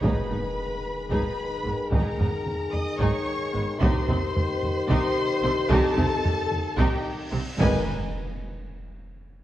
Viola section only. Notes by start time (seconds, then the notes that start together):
0.01 D#4 G#4
0.28 B3 D#4
1.10 D#4 G#4
1.65 G#3 B3
1.91 D#4 G#4
2.18 B3 D#4
2.99 D#4 G#4
3.53 G#3 B3
3.81 D#4 G4
4.08 C4 D#4
4.89 D#4 G4
5.43 G3 C4
5.70 D#4 G4
5.97 C4 D#4
6.77 D#4 G4
7.31 G3 C4
7.60 D#4 B4